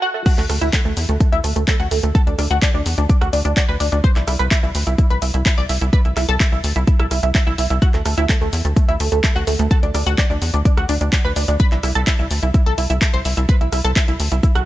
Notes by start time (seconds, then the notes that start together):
0.02 F#4
0.14 A3
0.26 F#4, kick, closed hi-hat, crash, shaker
0.38 D2 A3, clap, closed hi-hat, shaker
0.49 D2 A3, cross-stick, open hi-hat, shaker
0.61 D2 E4, closed hi-hat, shaker
0.73 A3, kick, clap, closed hi-hat, shaker
0.85 D2 A3, shaker
0.97 E2, open hi-hat, shaker
1.09 D2 A3, closed hi-hat, shaker
1.20 A3, kick, closed hi-hat, shaker
1.32 D2 E4, closed hi-hat, shaker
1.44 D2 A3, open hi-hat, shaker
1.56 D2 A3, closed hi-hat, shaker
1.68 A3, kick, clap, closed hi-hat, shaker
1.80 D2 F#4, shaker
1.91 D2 A3, open hi-hat, shaker
2.03 D2 A3, closed hi-hat, shaker
2.15 A4, kick, closed hi-hat, shaker
2.27 D2 D4, closed hi-hat, shaker
2.38 D2 D4, cross-stick, open hi-hat, shaker
2.51 D2 F#4, closed hi-hat, shaker
2.62 D4, kick, clap, closed hi-hat, shaker
2.74 D2 D4, shaker
2.86 E2, open hi-hat, shaker
2.98 D2 D4, closed hi-hat, shaker
3.09 D4, kick, closed hi-hat, shaker
3.21 D2 F#4, cross-stick, closed hi-hat, shaker
3.33 D2 D4, open hi-hat, shaker
3.45 D2 D4, closed hi-hat, shaker
3.57 D4, kick, clap, closed hi-hat, shaker
3.69 D2 B4, shaker
3.80 D2 D4, open hi-hat, shaker
3.92 D2 D4, closed hi-hat, shaker
4.04 C5, kick, closed hi-hat, shaker
4.16 C2 E4, clap, closed hi-hat, shaker
4.27 C2 E4, cross-stick, open hi-hat, shaker
4.39 C2 B4, closed hi-hat, shaker
4.51 E4, kick, clap, closed hi-hat, shaker
4.63 C2 E4, shaker
4.75 D2, open hi-hat, shaker
4.87 C2 E4, closed hi-hat, shaker
4.98 E4, kick, closed hi-hat, shaker
5.10 C2 B4, closed hi-hat, shaker
5.22 C2 E4, open hi-hat, shaker
5.34 C2 E4, closed hi-hat, shaker
5.46 E4, kick, clap, closed hi-hat, shaker
5.58 C2 D5, shaker
5.69 C2 E4, open hi-hat, shaker
5.81 C2 E4, closed hi-hat, shaker
5.93 B4, kick, closed hi-hat, shaker
6.05 C2 E4, closed hi-hat, shaker
6.17 C2 E4, cross-stick, clap, open hi-hat, shaker
6.29 C2 A4, closed hi-hat, shaker
6.40 E4, kick, clap, closed hi-hat, shaker
6.52 C2 E4, shaker
6.64 D2, open hi-hat, shaker
6.76 C2 E4, shaker
6.87 E4, kick, closed hi-hat, shaker
6.99 C2 E4, cross-stick, closed hi-hat, shaker
7.11 C2 E4, cross-stick, open hi-hat, shaker
7.23 C2 E4, closed hi-hat, shaker
7.35 E4, kick, clap, closed hi-hat, shaker
7.47 C2 E4, shaker
7.58 C2 E4, open hi-hat, shaker
7.70 C2 E4, closed hi-hat, shaker
7.82 F#4, kick, closed hi-hat, shaker
7.94 D2 A3, clap, closed hi-hat, shaker
8.06 D2 A3, cross-stick, open hi-hat, shaker
8.18 D2 E4, closed hi-hat, shaker
8.29 A3, kick, clap, closed hi-hat, shaker
8.41 D2 A3, shaker
8.53 E2, open hi-hat, shaker
8.65 D2 A3, closed hi-hat, shaker
8.76 A3, kick, closed hi-hat, shaker
8.88 D2 E4, closed hi-hat, shaker
9.00 D2 A3, open hi-hat, shaker
9.12 D2 A3, closed hi-hat, shaker
9.24 A3, kick, clap, closed hi-hat, shaker
9.36 D2 F#4, shaker
9.47 D2 A3, open hi-hat, shaker
9.59 D2 A3, closed hi-hat, shaker
9.71 A4, kick, closed hi-hat, shaker
9.83 D2 D4, closed hi-hat, shaker
9.94 D2 D4, cross-stick, open hi-hat, shaker
10.06 D2 F#4, closed hi-hat, shaker
10.18 D4, kick, clap, closed hi-hat, shaker
10.30 D2 D4, shaker
10.42 E2, open hi-hat, shaker
10.54 D2 D4, closed hi-hat, shaker
10.65 D4, kick, closed hi-hat, shaker
10.77 D2 F#4, cross-stick, closed hi-hat, shaker
10.89 D2 D4, open hi-hat, shaker
11.01 D2 D4, closed hi-hat, shaker
11.13 D4, kick, clap, closed hi-hat, shaker
11.25 D2 B4, shaker
11.36 D2 D4, open hi-hat, shaker
11.48 D2 D4, closed hi-hat, shaker
11.60 B4, kick, closed hi-hat, shaker
11.72 C2 E4, clap, closed hi-hat, shaker
11.83 C2 E4, cross-stick, open hi-hat, shaker
11.95 C2 A4, closed hi-hat, shaker
12.07 E4, kick, clap, closed hi-hat, shaker
12.19 C2 E4, shaker
12.31 D2, open hi-hat, shaker
12.43 C2 E4, closed hi-hat, shaker
12.54 E4, kick, closed hi-hat, shaker
12.66 C2 A4, closed hi-hat, shaker
12.78 C2 E4, open hi-hat, shaker
12.90 C2 E4, closed hi-hat, shaker
13.02 E4, kick, clap, closed hi-hat, shaker
13.14 C2 C5, shaker
13.25 C2 E4, open hi-hat, shaker
13.37 C2 E4, closed hi-hat, shaker
13.49 B4, kick, closed hi-hat, shaker
13.61 C2 E4, closed hi-hat, shaker
13.72 C2 E4, cross-stick, open hi-hat, shaker
13.84 C2 A4, closed hi-hat, shaker
13.96 E4, kick, clap, closed hi-hat, shaker
14.08 C2 E4, closed hi-hat, shaker
14.20 D2, open hi-hat, shaker
14.32 C2 E4, closed hi-hat, shaker
14.43 E4, kick, closed hi-hat, shaker
14.55 C2 F#4, cross-stick, closed hi-hat, shaker